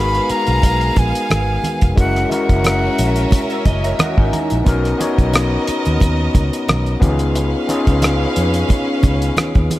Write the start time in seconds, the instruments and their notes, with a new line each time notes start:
Already playing: fingered electric bass G#1, tine electric piano G#3 B3 D#4 F#4 A#4 B4, violin section B3 G#4 F5, flute B5
0.15 closed hi-hat
0.30 flute A#5, muted fingered electric bass stroke, closed hi-hat
0.47 fingered electric bass B1, closed hi-hat
0.62 fingered electric bass B1, kick, closed hi-hat, low conga
0.81 closed hi-hat
0.96 fingered electric bass A#1, flute G#5, kick, closed hi-hat, muted conga, low conga
1.15 closed hi-hat
1.30 fingered electric bass G#1, cross-stick, closed hi-hat, high conga
1.64 closed hi-hat, high conga
1.81 fingered electric bass F1, kick, closed hi-hat
1.96 fingered electric bass F#1, tine electric piano G#3 C#4 E4 F#4 A#4, violin section C#4 A#4 E5, flute F#5, kick, closed hi-hat
2.16 cross-stick, closed hi-hat
2.29 tine electric piano G#3 C#4 E4 F#4 A#4, flute F#5, closed hi-hat, muted conga
2.49 fingered electric bass F#1, kick, closed hi-hat
2.64 cross-stick, closed hi-hat, high conga
2.98 fingered electric bass A#1, closed hi-hat
3.16 closed hi-hat
3.31 kick, closed hi-hat, low conga
3.50 clean electric guitar C#5 E5, closed hi-hat
3.65 fingered electric bass F#1, tine electric piano D#5, clean electric guitar D#5, kick, closed hi-hat, muted conga, low conga
3.84 clean electric guitar A#4 C#5, tine electric piano E5, closed hi-hat
3.99 clean electric guitar F#4 A#4, tine electric piano F#5, muted fingered electric bass stroke, cross-stick, closed hi-hat, high conga
4.17 fingered electric bass G#1, clean electric guitar D#4 F#4, tine electric piano G#5, kick
4.33 tine electric piano A#5, closed hi-hat, high conga
4.50 fingered electric bass A#1, closed hi-hat
4.64 fingered electric bass B1, tine electric piano B3 C#4 D#4 F#4 A#4, violin section B3 A#4 D#5, kick, closed hi-hat, muted conga
4.85 cross-stick, closed hi-hat
4.98 tine electric piano B3 C#4 D#4 F#4 C#5, closed hi-hat, muted conga
5.18 fingered electric bass B1, kick, closed hi-hat
5.33 cross-stick, closed hi-hat, high conga
5.67 muted fingered electric bass stroke, closed hi-hat
5.85 fingered electric bass D#2, closed hi-hat
6.00 fingered electric bass D#2, kick, closed hi-hat, low conga
6.35 fingered electric bass C#2, kick, closed hi-hat, muted conga, low conga
6.53 closed hi-hat
6.68 fingered electric bass B1, cross-stick, closed hi-hat, high conga
6.86 closed hi-hat
7.00 fingered electric bass C#2, tine electric piano B3 C#4 D#4 F4 G4, violin section C#4 B4 F5, kick, closed hi-hat, high conga
7.09 tine electric piano G#4
7.19 closed hi-hat
7.35 closed hi-hat, muted conga
7.67 tine electric piano B3 C#4 D#4 F4 G#4, closed hi-hat, muted conga
7.87 fingered electric bass C#2, kick, closed hi-hat
8.02 cross-stick, closed hi-hat, high conga
8.36 fingered electric bass F2, closed hi-hat
8.54 closed hi-hat
8.69 kick, closed hi-hat, low conga
9.03 fingered electric bass C#2, kick, closed hi-hat, muted conga, low conga
9.22 closed hi-hat
9.37 cross-stick, closed hi-hat, high conga
9.55 fingered electric bass D#2, kick, closed hi-hat
9.71 closed hi-hat, high conga